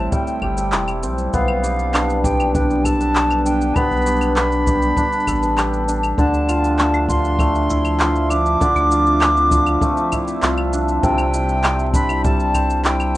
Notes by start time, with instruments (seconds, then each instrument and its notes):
Already playing: hammered dulcimer A2 G3 C4 E4 G4 A4, ambient pad G3 A3 C4, flute A5
0.12 hammered dulcimer G3, flute G5, kick, shaker
0.27 shaker
0.42 sub bass G1, hammered dulcimer G4, kick, claves
0.58 hammered dulcimer A4, shaker
0.72 sub bass E1, hammered dulcimer E4, clap, shaker
0.88 claves, shaker
1.03 sub bass B1, hammered dulcimer C4, shaker
1.18 shaker
1.33 sub bass B1, ambient pad B3 D4, hammered dulcimer B3, flute F5, kick, shaker
1.48 claves
1.64 hammered dulcimer G4, shaker
1.79 shaker
1.94 hammered dulcimer D4, clap, claves, shaker
2.10 shaker
2.24 hammered dulcimer G4, flute G5, kick, shaker
2.40 claves, shaker
2.54 hammered dulcimer D4, flute G5, kick, shaker
2.70 shaker
2.84 hammered dulcimer A4, flute A5, kick, claves, shaker
3.00 hammered dulcimer B4, shaker
3.15 hammered dulcimer G4, clap, shaker
3.30 claves, shaker
3.45 hammered dulcimer D4, flute G5, shaker
3.61 shaker
3.75 hammered dulcimer B3, flute B5, kick, claves, shaker
3.91 sub bass B1, shaker
3.97 shaker
4.02 shaker
4.06 hammered dulcimer G4, shaker
4.17 shaker
4.21 claves, shaker
4.36 hammered dulcimer D4, flute B5, clap, shaker
4.52 shaker
4.67 hammered dulcimer G4, kick, shaker
4.82 shaker
4.97 hammered dulcimer D4, kick, shaker
5.12 shaker
5.20 shaker
5.27 sub bass A1, hammered dulcimer A4, kick, claves, shaker
5.43 hammered dulcimer B4, shaker
5.58 hammered dulcimer G4, clap, claves, shaker
5.73 shaker
5.88 hammered dulcimer D4, shaker
6.03 claves, shaker
6.18 sub bass D2, hammered dulcimer D3, ambient pad F3 D4 E5, flute A5, kick, shaker
6.34 shaker
6.49 hammered dulcimer F4, claves, shaker
6.64 shaker
6.79 hammered dulcimer D4, clap, shaker
6.94 claves, shaker
7.09 hammered dulcimer F4, flute C6, kick, shaker
7.25 shaker
7.39 hammered dulcimer A3, kick, claves, shaker
7.55 shaker
7.70 hammered dulcimer E4, kick, shaker
7.85 claves, shaker
8.00 hammered dulcimer F4, clap, shaker
8.16 shaker
8.30 hammered dulcimer D4, flute D6, claves, shaker
8.46 shaker
8.60 hammered dulcimer D3, ambient pad C4, kick, shaker
8.75 sub bass D2, claves, shaker
8.91 hammered dulcimer F4, shaker
9.07 shaker
9.21 hammered dulcimer D4, clap, claves, shaker
9.37 shaker
9.51 hammered dulcimer F4, kick, shaker
9.67 claves, shaker
9.81 hammered dulcimer A3, kick, shaker
9.97 shaker
10.12 hammered dulcimer E4, kick, claves, shaker
10.28 shaker
10.42 sub bass C2, hammered dulcimer F4, clap, shaker
10.58 claves
10.73 hammered dulcimer D4, shaker
10.88 shaker
11.03 sub bass C2, ambient pad C3 G3, hammered dulcimer C3, flute G5, kick, shaker
11.18 claves, shaker
11.34 hammered dulcimer E4, shaker
11.49 shaker
11.64 hammered dulcimer C4, clap, claves, shaker
11.79 shaker
11.94 hammered dulcimer D4, flute B5, kick, shaker
12.09 hammered dulcimer E4, claves, shaker
12.24 hammered dulcimer G3, flute A5, kick, shaker
12.40 shaker
12.54 hammered dulcimer C5, kick, claves, shaker
12.70 shaker
12.85 hammered dulcimer E4, flute G5, clap, shaker
13.00 claves, shaker